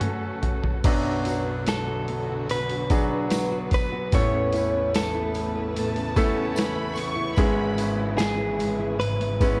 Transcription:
Already playing: F#2 C#3 F#3 A3 C#4 F#4 A4 B4
0.01 C#4, closed hi-hat, mid tom
0.42 F#4, closed hi-hat, floor tom
0.64 floor tom
0.84 B1 F#2 B2 D3 F#3 B3 D4 F#4 B4, kick, open hi-hat, crash, tambourine
1.05 D4
1.25 F#4, open hi-hat, tambourine
1.46 D4
1.67 F#3 A4, snare, open hi-hat, tambourine
1.87 F#4
2.08 B3, open hi-hat
2.29 F#4
2.49 B2 B4, open hi-hat, tambourine
2.69 D4, open hi-hat
2.90 F#3 B3 D4 F#4 G#4, kick, open hi-hat, tambourine
3.11 D4
3.30 F#3, snare, open hi-hat, tambourine
3.51 F#4
3.71 B3 B4, kick, open hi-hat, tambourine
3.92 F#4
4.12 A1 E2 A2 C#3 A3 B3 C#4 E4 A4 C#5, kick, open hi-hat, tambourine
4.33 C#4
4.53 E4, open hi-hat, tambourine
4.74 C#4
4.94 E3 A4, snare, open hi-hat, tambourine
5.15 E4
5.34 B3, open hi-hat, tambourine
5.55 E4
5.76 A2 A5, open hi-hat, tambourine
5.95 C#4, open hi-hat
6.16 A3 B3 C#4 E4 A4, kick, open hi-hat, tambourine
6.36 C#4
6.55 E3 B5, snare, open hi-hat, tambourine
6.75 E4
6.95 B3 C#6, open hi-hat, tambourine
7.16 E4
7.35 G#1 G#2 G#3 B3 C#4 E4 G#4 B5, kick, open hi-hat, tambourine
7.56 B3
7.77 E4, open hi-hat, tambourine
7.98 B3
8.18 E3 G#4, snare, open hi-hat, tambourine
8.38 E4
8.59 G#3, open hi-hat, tambourine
8.79 E4
9.00 G#2 B4, open hi-hat
9.20 B3, open hi-hat
9.41 G#3 B3 C#4 E4 B4, kick, open hi-hat, tambourine

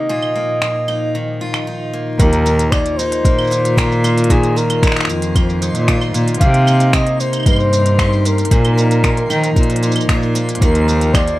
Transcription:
Already playing: D#3 A#3 D#4 D#5
0.09 A#2 F3 F4
0.22 claves
0.36 A#3
0.62 F4, finger snap
0.88 D#4, claves
1.15 D#3
1.41 F4
1.54 finger snap, claves
1.67 D#4
1.93 A#3
2.19 D#2 D#3 A#3 F4 A#4 C5 C6, kick, closed hi-hat, shaker
2.33 closed hi-hat, shaker
2.46 D#4, shaker
2.59 closed hi-hat, shaker
2.72 A#3 D5, finger snap, kick, closed hi-hat, claves, shaker
2.86 closed hi-hat, shaker
2.97 D#4 C5, shaker
3.12 closed hi-hat, shaker
3.25 A#2 A#3, kick, closed hi-hat, shaker
3.38 claves, shaker
3.41 shaker
3.44 shaker
3.47 shaker
3.50 D#4, closed hi-hat, shaker
3.52 shaker
3.65 closed hi-hat, shaker
3.77 F4 A#4, finger snap, kick, closed hi-hat, shaker
3.92 shaker
4.04 A#3, closed hi-hat, claves, shaker
4.18 closed hi-hat, shaker
4.24 closed hi-hat
4.30 D#3 G#4, kick, closed hi-hat, shaker
4.43 closed hi-hat, shaker
4.56 D#4 A#4, shaker
4.70 closed hi-hat, claves, shaker
4.83 A#3, finger snap, kick, closed hi-hat, shaker
4.87 finger snap
4.92 finger snap
4.96 finger snap, closed hi-hat, shaker
5.00 finger snap
5.05 F2, finger snap
5.09 D#4, shaker
5.22 closed hi-hat, shaker
5.35 A#3, kick, closed hi-hat, claves, shaker
5.50 shaker
5.62 D#4, closed hi-hat, shaker
5.75 A#2, closed hi-hat, shaker
5.88 F4, finger snap, kick, closed hi-hat, shaker
6.01 claves, shaker
6.14 A#2 A#3, closed hi-hat, shaker
6.28 closed hi-hat, shaker
6.34 closed hi-hat
6.40 C3 D#4 F5, kick, closed hi-hat, shaker
6.54 closed hi-hat, shaker
6.67 D#4, claves, shaker
6.80 closed hi-hat, shaker
6.93 A#3 D#5, finger snap, kick, closed hi-hat, shaker
7.07 closed hi-hat, shaker
7.20 D#4 C5, shaker
7.33 closed hi-hat, claves, shaker
7.36 claves
7.40 claves
7.43 G2, kick, closed hi-hat, claves
7.46 A#3 C5, claves, shaker
7.50 claves
7.53 claves
7.56 claves, shaker
7.73 D#4, closed hi-hat, shaker
7.86 closed hi-hat, shaker
7.99 G4, finger snap, kick, closed hi-hat, claves, shaker
8.13 shaker
8.25 A#3 A#4, closed hi-hat, shaker
8.38 closed hi-hat, shaker
8.45 closed hi-hat
8.51 A#2 F3, kick, closed hi-hat, shaker
8.65 closed hi-hat, claves, shaker
8.78 D#4, shaker
8.91 closed hi-hat, shaker
9.04 A#3, finger snap, kick, closed hi-hat, shaker
9.17 closed hi-hat, shaker
9.30 D#3 D#4, claves, shaker
9.44 closed hi-hat, shaker
9.56 A#2 A#3, kick, closed hi-hat, shaker
9.63 closed hi-hat
9.70 closed hi-hat, shaker
9.76 closed hi-hat
9.83 D#4, closed hi-hat, shaker
9.92 closed hi-hat, claves, shaker
9.96 shaker
10.01 shaker
10.09 A#2 F4, finger snap, kick, closed hi-hat, shaker
10.23 shaker
10.35 A#3, closed hi-hat, shaker
10.49 closed hi-hat, shaker
10.55 closed hi-hat
10.61 D#2 D#3 F4 A#4, kick, closed hi-hat, shaker
10.75 closed hi-hat, shaker
10.88 D#4, shaker
11.01 closed hi-hat, shaker
11.14 A#3 D5, finger snap, kick, closed hi-hat, claves, shaker
11.28 closed hi-hat, shaker

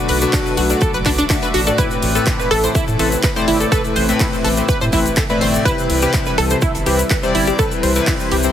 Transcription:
Already playing: B2 D3 F#3 A3 D4 F#4 B4 D6
0.08 B1 B4, closed hi-hat, open hi-hat
0.21 B2 A3 D4 F#4 B4, closed hi-hat, shaker
0.33 D4, kick, snare, clap, closed hi-hat, open hi-hat, shaker
0.46 closed hi-hat, shaker
0.57 B1 F#4, closed hi-hat, open hi-hat
0.69 B2 A3 D4 F#4 D5, snare, closed hi-hat, shaker
0.81 A4, kick, closed hi-hat, shaker
0.94 F#1 B4, closed hi-hat, shaker
1.06 B1 D4, kick, clap, closed hi-hat, open hi-hat
1.18 D4, closed hi-hat, shaker
1.29 B2 A3 D4 F#4 E5, kick, snare, clap, closed hi-hat, open hi-hat, shaker
1.42 B4, closed hi-hat, shaker
1.54 A1 F#4, closed hi-hat, open hi-hat
1.67 A2 A3 D4 F#4 A4 D5, shaker
1.78 C3 E3 A3 C4 E4 B4, kick, closed hi-hat, shaker
1.91 closed hi-hat, shaker
2.02 A1, closed hi-hat, open hi-hat
2.15 A2 A3 C4 E4 A4 B4, snare, closed hi-hat, shaker
2.26 kick, snare, clap, closed hi-hat, shaker
2.39 B4, snare, closed hi-hat, shaker
2.51 A1 A4, closed hi-hat, open hi-hat
2.64 A2 A3 C4 E4 C5, closed hi-hat, shaker
2.75 E4, kick, closed hi-hat, shaker
2.88 A2, closed hi-hat, shaker
2.99 A1 A2 A3 C4 E4 A4 B4, closed hi-hat, open hi-hat
3.12 closed hi-hat, shaker
3.23 B4, kick, snare, clap, closed hi-hat, shaker
3.36 A2 A3 C4 E4 C5 D5, closed hi-hat, shaker
3.48 G1 E4, closed hi-hat, open hi-hat
3.60 A4, closed hi-hat, shaker
3.72 C4 A4 B4, kick, closed hi-hat, shaker
3.84 closed hi-hat, shaker
3.96 A1 C5, closed hi-hat, open hi-hat
4.09 A2 A3 C4 E4 B4, closed hi-hat, shaker
4.20 E4, kick, snare, clap, closed hi-hat, open hi-hat, shaker
4.33 closed hi-hat, shaker
4.44 A1 A4, closed hi-hat, open hi-hat
4.56 A2 A3 C4 E4 C5, snare, closed hi-hat, shaker
4.68 B4, kick, closed hi-hat, shaker
4.81 A2 C5, closed hi-hat, shaker
4.92 A1 A2 A3 C4 E4 B4, kick, closed hi-hat, open hi-hat
5.06 closed hi-hat, shaker
5.16 A4, kick, snare, clap, closed hi-hat, shaker
5.29 A2 A3 C4 E4 B4 D5, closed hi-hat, shaker
5.41 G1 C5, snare, open hi-hat
5.54 closed hi-hat, shaker
5.65 C3 E3 G3 C4 E4 B4, kick, closed hi-hat, shaker
5.78 closed hi-hat, shaker
5.90 C2, closed hi-hat, open hi-hat
6.02 C3 G3 C4 E4 G4 B4, snare, closed hi-hat, shaker
6.14 kick, snare, clap, closed hi-hat, shaker
6.26 B4, snare, closed hi-hat, shaker
6.38 C2 A4, closed hi-hat, open hi-hat
6.50 C3 G3 C4 E4 C5, closed hi-hat, shaker
6.62 E4, kick, closed hi-hat, shaker
6.75 G1, closed hi-hat, shaker
6.86 C2 C3 G3 C4 E4 G4 B4, closed hi-hat, open hi-hat
6.99 closed hi-hat, shaker
7.10 B4, kick, snare, clap, closed hi-hat, shaker
7.23 C3 G3 C4 E4 C5 D5, closed hi-hat, shaker
7.35 G1 E4, closed hi-hat, open hi-hat
7.47 G4, closed hi-hat, shaker
7.59 C3 C4 A4 B4, kick, closed hi-hat, shaker
7.71 closed hi-hat, shaker
7.83 C2 C5, closed hi-hat, open hi-hat
7.95 C3 G3 C4 E4 B4, closed hi-hat, shaker
8.07 E4, kick, snare, clap, closed hi-hat, open hi-hat, shaker
8.20 closed hi-hat, shaker
8.31 C2 G4, closed hi-hat, open hi-hat
8.43 C3 G3 C4 E4 C5, snare, closed hi-hat, shaker

